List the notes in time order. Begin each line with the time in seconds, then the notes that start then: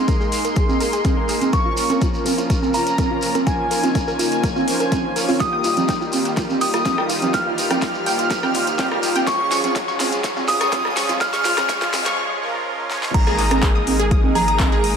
Already playing: G#1 G#3 A#3 D#4 G#4 A#4 C6, riser
0.08 A#4, kick, closed hi-hat, shekere
0.21 G#4, shekere
0.32 open hi-hat, shekere
0.45 A#4, closed hi-hat, shekere
0.56 G#4, kick, closed hi-hat, shekere
0.69 high conga, shekere
0.80 A#4, open hi-hat, shekere
0.93 G#4, closed hi-hat, shekere
1.05 G#3 A#3 D#4 G#4 A#4, kick, closed hi-hat, high conga, shekere
1.17 A#4
1.29 G#4, open hi-hat, shekere
1.41 closed hi-hat, high conga, shekere
1.53 A#1 F3 A#3 C#4 F4 A#4 C#6, kick, closed hi-hat, shekere
1.66 F4
1.77 open hi-hat, shekere
1.90 A#4, closed hi-hat, high conga, shekere
2.01 F4, kick, closed hi-hat, shekere
2.14 shekere
2.26 A#4, open hi-hat, high conga, shekere
2.38 F4, closed hi-hat, shekere
2.50 kick, closed hi-hat, shekere
2.62 A#4, high conga, shekere
2.74 F4 A#5, open hi-hat, shekere
2.87 closed hi-hat, shekere
2.98 F3 A#3 C#4 F4 A#4, kick, closed hi-hat, high conga, shekere
3.11 F4
3.22 open hi-hat, shekere
3.35 A#4, closed hi-hat, high conga, shekere
3.47 F3 A#3 C#4 D#4 F4 A#4 G#5, kick, closed hi-hat, shekere
3.71 A#4, open hi-hat, shekere
3.83 F4, closed hi-hat, high conga, shekere
3.95 kick, closed hi-hat, shekere
4.07 A#4, shekere
4.19 F4, open hi-hat, shekere
4.32 closed hi-hat, shekere
4.43 A#4, kick, closed hi-hat, shekere
4.56 F4, high conga, shekere
4.68 F3 A#3 C#4 F4 C5, open hi-hat, shekere
4.80 A#4, closed hi-hat, shekere
4.92 F4, kick, closed hi-hat, high conga, shekere
5.16 F3 A#3 C#4 F4 A#4 C#5, open hi-hat, shekere
5.29 F4, open hi-hat, high conga, shekere
5.40 D#2 D#3 G3 A#3 D#4 F4 G4 D#6, kick, snare, closed hi-hat, shekere
5.53 G5
5.64 F4, open hi-hat, shekere
5.77 closed hi-hat, high conga, low conga, shekere
5.89 G5, kick, snare, closed hi-hat, shekere
6.01 F4, shekere
6.12 open hi-hat, high conga, shekere
6.25 G5, closed hi-hat, shekere
6.37 F4, kick, snare, closed hi-hat, shekere
6.50 high conga, shekere
6.61 G5 D#6, open hi-hat, shekere
6.74 F4, cross-stick, closed hi-hat, shekere
6.85 G3 A#3 D#4 F4 G4, kick, snare, closed hi-hat, high conga, shekere
6.98 G5, cross-stick
7.09 F4, open hi-hat, shekere
7.22 closed hi-hat, high conga, low conga, shekere
7.33 A#3 D#4 F4 G4 G5 F6, kick, snare, closed hi-hat, shekere
7.46 F4
7.58 open hi-hat, shekere
7.70 G5, cross-stick, closed hi-hat, high conga, low conga, shekere
7.81 F4, kick, snare, closed hi-hat, shekere
7.94 shekere
8.06 G5, open hi-hat, shekere
8.19 F4, closed hi-hat, shekere
8.30 kick, snare, closed hi-hat, shekere
8.43 G5, cross-stick, high conga, shekere
8.54 F4, open hi-hat, shekere
8.67 closed hi-hat, shekere
8.78 G3 A#3 D#4 F4 G4 G5, kick, snare, closed hi-hat, high conga, shekere
8.92 F4, cross-stick
9.03 open hi-hat, shekere
9.16 G5, closed hi-hat, high conga, shekere
9.27 C#2 C#3 F3 G#3 C#4 F4 G#4 C#6, kick, snare, closed hi-hat, shekere
9.51 C#6, snare, open hi-hat, shekere
9.64 F4, closed hi-hat, high conga, low conga, shekere
9.75 kick, snare, closed hi-hat, shekere
9.88 C#6, shekere
10.00 F4, snare, open hi-hat, high conga, shekere
10.12 closed hi-hat, shekere
10.24 C#6, kick, snare, closed hi-hat, shekere
10.36 F4, high conga, shekere
10.48 D#6, snare, open hi-hat, shekere
10.61 C#6, cross-stick, closed hi-hat, shekere
10.72 F3 G#3 C#4 F4 G#4, kick, snare, closed hi-hat, high conga, shekere
10.85 cross-stick
10.97 C#6, snare, open hi-hat, shekere
11.09 F4, closed hi-hat, high conga, low conga, shekere
11.21 F3 G#3 C#4 F4 G#4 F6, kick, snare, closed hi-hat, shekere
11.33 C#6, snare, closed hi-hat, shekere
11.44 F4, snare, open hi-hat, shekere
11.58 cross-stick, snare, closed hi-hat, high conga, low conga, shekere
11.69 C#6, kick, snare, closed hi-hat, shekere
11.81 F4, snare, shekere
11.93 snare, open hi-hat, high conga, shekere
12.05 C#6, snare, closed hi-hat, shekere
12.42 F3 G#3 C#4 F4 A#4
12.90 F3 G#3 C#4 F4 C#5, snare
13.03 snare
13.14 G#1 G#3 A#3 D#4 G#4 A#5, kick, closed hi-hat, crash
13.27 G#4, cross-stick
13.39 D#6, clap, open hi-hat
13.51 cross-stick, closed hi-hat, high conga
13.63 G#4, kick, clap, closed hi-hat
13.75 D#6
13.87 open hi-hat, high conga
13.99 G#4, closed hi-hat
14.11 D#6, kick, closed hi-hat
14.24 high conga
14.35 G#4 A#5, open hi-hat, low conga
14.48 D#6, closed hi-hat
14.60 G#3 A#3 D#4 A#4, kick, clap, closed hi-hat, high conga
14.72 G#4
14.84 D#6, open hi-hat